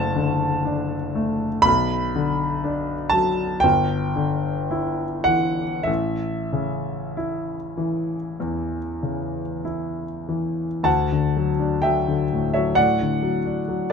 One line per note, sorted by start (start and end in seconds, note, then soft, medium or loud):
0.00 1.61 F#1 medium
0.00 0.15 D3 medium
0.00 1.15 A3 medium
0.00 0.65 D4 medium
0.00 1.68 F#5 loud
0.00 1.64 A5 loud
0.15 0.95 D3 medium
0.65 1.46 D4 medium
1.15 1.66 A3 medium
1.62 3.59 B1 medium
1.62 3.11 B5 loud
2.16 2.93 D3 medium
2.64 3.43 D4 medium
3.10 3.63 F#3 medium
3.10 3.62 A5 medium
3.60 5.83 G1 medium
3.60 5.25 G5 loud
4.16 5.04 D3 soft
4.71 5.62 E4 medium
5.24 5.88 E3 medium
5.24 5.86 F#5 medium
5.83 8.37 A1 medium
5.83 9.62 E5 medium
6.53 7.55 C#3 soft
7.17 8.16 E4 medium
7.77 8.76 E3 soft
8.40 9.39 E2 medium
9.03 10.03 C#3 soft
9.65 10.65 E4 soft
10.29 10.86 E3 soft
10.83 12.71 D2 medium
10.83 11.79 F#5 medium
10.83 11.83 A5 medium
11.12 11.51 D3 soft
11.37 11.75 F#3 soft
11.59 11.98 D4 soft
11.82 12.22 F#3 soft
11.82 12.50 E5 medium
11.82 12.53 G5 medium
12.08 12.45 D3 soft
12.33 12.69 A2 soft
12.54 12.91 F#3 soft
12.54 12.75 C#5 medium
12.54 12.76 E5 medium
12.75 13.14 A2 soft
12.75 13.88 D5 medium
12.75 13.91 F#5 medium
13.02 13.37 D3 soft
13.23 13.59 F#3 soft
13.45 13.83 D4 soft
13.68 13.92 F#3 soft